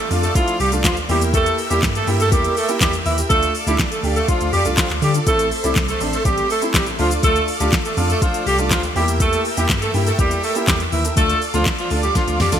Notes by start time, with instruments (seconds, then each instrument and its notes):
Already playing: supersaw synth A4 D5 F5 D6
0.10 tine electric piano F2, grand piano A3 D4 F4, open hi-hat, shaker
0.23 horn section A3 A4, closed hi-hat, shaker
0.35 horn section F3 F4, grand piano A3 D4 E4, kick, closed hi-hat, shaker
0.48 closed hi-hat, shaker
0.60 tine electric piano C2, horn section G3 G4, open hi-hat, shaker
0.72 grand piano A3 D4 F4, closed hi-hat, shaker
0.84 horn section F3 F4, kick, snare, clap, closed hi-hat, shaker
0.97 closed hi-hat, shaker
1.09 tine electric piano E2, horn section G3 G4, grand piano A#3 E4 G4, supersaw synth A#4 E5 G5 E6, open hi-hat, shaker
1.21 closed hi-hat, shaker
1.34 horn section A3 A4, kick, closed hi-hat, shaker
1.46 closed hi-hat, shaker
1.58 open hi-hat, shaker
1.70 tine electric piano E2, horn section G3 G4, grand piano A#3 E4 G4, closed hi-hat, shaker
1.82 tine electric piano G2, kick, snare, clap, closed hi-hat, shaker
1.95 horn section A3 A4, closed hi-hat, shaker
2.07 tine electric piano G2, grand piano A#3 E4 G4, open hi-hat, shaker
2.20 horn section A3 A4, closed hi-hat, shaker
2.32 tine electric piano E2, horn section G3 G4, grand piano A#3 E4 A#4, kick, closed hi-hat, shaker
2.44 closed hi-hat, shaker
2.56 horn section A3 A4, open hi-hat, shaker
2.69 grand piano A#3 E4 G4, closed hi-hat, shaker
2.81 tine electric piano E2, horn section G3 G4, kick, snare, clap, closed hi-hat, shaker
2.93 closed hi-hat, shaker
3.06 tine electric piano D#2, horn section E3 E4, open hi-hat, shaker
3.18 grand piano E4 G4, closed hi-hat, shaker
3.30 tine electric piano D2, grand piano A3 D4 F4, horn section A3 A4, supersaw synth D5 D6, kick, closed hi-hat, shaker
3.43 closed hi-hat, shaker
3.55 open hi-hat, shaker
3.67 tine electric piano D2, horn section G3 G4, grand piano A3 D4 E4, closed hi-hat, shaker
3.79 kick, snare, clap, closed hi-hat, shaker
3.91 horn section A3 A4, closed hi-hat, shaker
4.04 tine electric piano D2, grand piano A3 D4 G4, open hi-hat, shaker
4.16 horn section A3 A4, closed hi-hat, shaker
4.28 horn section F3 F4, grand piano A3 D4 F4, kick, closed hi-hat, shaker
4.41 tine electric piano D2, closed hi-hat, shaker
4.53 tine electric piano F2, horn section G3 G4, open hi-hat, shaker
4.65 tine electric piano C2, grand piano A3 D4 F4, closed hi-hat, shaker
4.78 horn section F3 F4, kick, snare, clap, closed hi-hat, shaker
4.90 tine electric piano D2, clap, closed hi-hat, shaker
5.02 tine electric piano D3, horn section G3 G4, open hi-hat, shaker
5.14 grand piano D4 F4, closed hi-hat, shaker
5.26 tine electric piano A1, grand piano A3 C4 E4, horn section A3 A4, supersaw synth C5 E5 C6, kick, closed hi-hat, shaker
5.39 closed hi-hat, shaker
5.51 open hi-hat, shaker
5.63 tine electric piano C2, horn section G3 G4, grand piano A3 C4 E4, closed hi-hat, shaker
5.76 tine electric piano C2, kick, snare, clap, closed hi-hat, shaker
5.88 horn section A3 A4, closed hi-hat, shaker
6.00 tine electric piano A1, grand piano A3 C4 D4, open hi-hat, shaker
6.13 horn section A3 A4, closed hi-hat, shaker
6.25 tine electric piano A1, horn section G3 G4, grand piano A3 C4 G4, kick, closed hi-hat, shaker
6.38 closed hi-hat, shaker
6.50 horn section A3 A4, open hi-hat, shaker
6.62 grand piano A3 C4 E4, closed hi-hat, shaker
6.74 tine electric piano A1, horn section G3 G4, kick, snare, clap, closed hi-hat, shaker
6.87 closed hi-hat, shaker
6.99 tine electric piano D2, horn section F3 F4, grand piano A3 D4 F4, supersaw synth A4 D5 F5 D6, open hi-hat, shaker
7.11 closed hi-hat, shaker
7.23 tine electric piano D2, horn section A3 A4, kick, closed hi-hat, shaker
7.36 closed hi-hat, shaker
7.48 open hi-hat, shaker
7.60 tine electric piano D2, horn section G3 G4, grand piano A3 D4 F4, closed hi-hat, shaker
7.72 kick, snare, clap, closed hi-hat, shaker
7.85 horn section A3 A4, closed hi-hat, shaker
7.97 tine electric piano F2, grand piano A3 D4 F4, open hi-hat, shaker
8.09 horn section A3 A4, closed hi-hat, shaker
8.22 horn section F3 F4, grand piano A3 D4 F4, kick, closed hi-hat, shaker
8.34 closed hi-hat, shaker
8.46 tine electric piano C2, horn section G3 G4, open hi-hat, shaker
8.59 grand piano A3 D4 F4, closed hi-hat, shaker
8.71 horn section F3 F4, kick, snare, clap, closed hi-hat, shaker
8.83 closed hi-hat, shaker
8.95 tine electric piano E2, horn section G3 G4, grand piano A#3 E4 G4, supersaw synth A#4 E5 G5 E6, open hi-hat, shaker
9.08 closed hi-hat, shaker
9.20 horn section A3 A4, kick, closed hi-hat, shaker
9.33 closed hi-hat, shaker
9.45 open hi-hat, shaker
9.57 tine electric piano E2, horn section G3 G4, grand piano A#3 E4 G4, closed hi-hat, shaker
9.69 kick, snare, clap, closed hi-hat, shaker
9.82 horn section A3 A4, closed hi-hat, shaker
9.94 tine electric piano G2, grand piano A#3 E4 G4, open hi-hat, shaker
10.06 horn section A3 A4, closed hi-hat, shaker
10.18 tine electric piano E2, horn section G3 G4, grand piano A#3 E4 G4, kick, closed hi-hat, shaker
10.31 closed hi-hat, shaker
10.43 horn section A3 A4, open hi-hat, shaker
10.55 grand piano A#3 E4 G4, closed hi-hat, shaker
10.68 tine electric piano E2, horn section G3 G4, kick, snare, clap, closed hi-hat, shaker
10.80 closed hi-hat, shaker
10.92 tine electric piano D#2, horn section E3 E4, open hi-hat, shaker
11.05 grand piano E4 A4, closed hi-hat, shaker
11.17 tine electric piano D2, grand piano A3 D4 F4, horn section A3 A4, supersaw synth D5 D6, kick, closed hi-hat, shaker
11.30 closed hi-hat, shaker
11.42 open hi-hat, shaker
11.54 tine electric piano D2, horn section F3 F4, grand piano A3 D4 F4, closed hi-hat, shaker
11.66 kick, snare, clap, closed hi-hat, shaker
11.78 horn section F3 F4, closed hi-hat, shaker
11.90 tine electric piano D2, grand piano A3 D4 F4, open hi-hat, shaker
12.03 horn section G3 G4, closed hi-hat, shaker
12.15 horn section F3 F4, grand piano A3 D4 F4, kick, snare, closed hi-hat, shaker
12.28 tine electric piano D2, closed hi-hat, shaker
12.40 tine electric piano F2, horn section G3 G4, snare, open hi-hat, shaker
12.52 tine electric piano C2, grand piano A3 D4 F4, snare, closed hi-hat, shaker